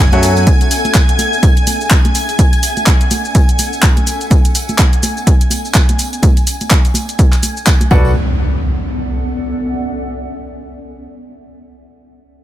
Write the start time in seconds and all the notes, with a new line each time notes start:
Already playing: F#1 A4 F#5 G#5 G#6
0.12 F#2 F#3 F#4 A4 C#5 E5 F#5, closed hi-hat, high conga, shaker
0.23 open hi-hat, tambourine, shaker
0.36 closed hi-hat, tambourine, shaker
0.47 kick, closed hi-hat, tambourine, high conga, shaker
0.61 closed hi-hat, tambourine, shaker
0.71 open hi-hat, tambourine, shaker
0.85 closed hi-hat, tambourine, high conga, shaker
0.94 kick, clap, closed hi-hat, tambourine, shaker
1.09 closed hi-hat, shaker
1.19 open hi-hat, tambourine, high conga, shaker
1.33 tambourine, shaker
1.43 kick, closed hi-hat, tambourine, shaker
1.57 closed hi-hat, shaker
1.67 open hi-hat, tambourine, high conga, shaker
1.81 tambourine, shaker
1.90 kick, clap, closed hi-hat, tambourine, shaker
2.05 closed hi-hat, high conga, shaker
2.15 B3, open hi-hat, tambourine, shaker
2.29 closed hi-hat, tambourine, shaker
2.39 kick, closed hi-hat, tambourine, high conga, shaker
2.53 closed hi-hat, tambourine, shaker
2.59 A4 F#5
2.63 open hi-hat, tambourine, shaker
2.77 closed hi-hat, tambourine, high conga, shaker
2.86 kick, clap, closed hi-hat, shaker
3.01 closed hi-hat, shaker
3.11 open hi-hat, tambourine, high conga, shaker
3.25 tambourine, shaker
3.35 kick, closed hi-hat, tambourine, shaker
3.49 closed hi-hat, shaker
3.59 open hi-hat, tambourine, high conga, shaker
3.73 tambourine, shaker
3.82 kick, clap, closed hi-hat, tambourine, shaker
3.97 closed hi-hat, high conga, shaker
4.07 open hi-hat, tambourine, shaker
4.21 closed hi-hat, tambourine, shaker
4.30 kick, closed hi-hat, tambourine, high conga, shaker
4.45 closed hi-hat, tambourine, shaker
4.55 open hi-hat, tambourine, shaker
4.69 closed hi-hat, tambourine, high conga, shaker
4.78 kick, clap, closed hi-hat, tambourine, shaker
4.93 closed hi-hat, shaker
5.03 open hi-hat, tambourine, high conga, shaker
5.17 tambourine, shaker
5.27 kick, closed hi-hat, tambourine, shaker
5.41 closed hi-hat, shaker
5.50 open hi-hat, tambourine, high conga, shaker
5.65 tambourine, shaker
5.74 kick, clap, closed hi-hat, shaker
5.89 closed hi-hat, high conga, shaker
5.99 B3, open hi-hat, tambourine, shaker
6.13 closed hi-hat, tambourine, shaker
6.22 kick, closed hi-hat, tambourine, high conga, shaker
6.37 A4, closed hi-hat, tambourine, shaker
6.43 F#5, open hi-hat, tambourine, shaker
6.61 closed hi-hat, tambourine, high conga, shaker
6.70 kick, clap, closed hi-hat, shaker
6.85 closed hi-hat, tambourine, shaker
6.94 open hi-hat, tambourine, high conga, shaker
7.08 closed hi-hat, tambourine, shaker
7.19 kick, closed hi-hat, tambourine, shaker
7.32 clap, closed hi-hat, tambourine, shaker
7.43 open hi-hat, tambourine, high conga, shaker
7.57 tambourine, shaker
7.67 kick, clap, closed hi-hat, tambourine, shaker
7.81 closed hi-hat, tambourine, high conga, shaker
7.91 B1 B3 F#4 A4 B4 D5 F#5, kick, tambourine, impact
7.99 A4
8.05 tambourine
8.31 D5
8.37 F#5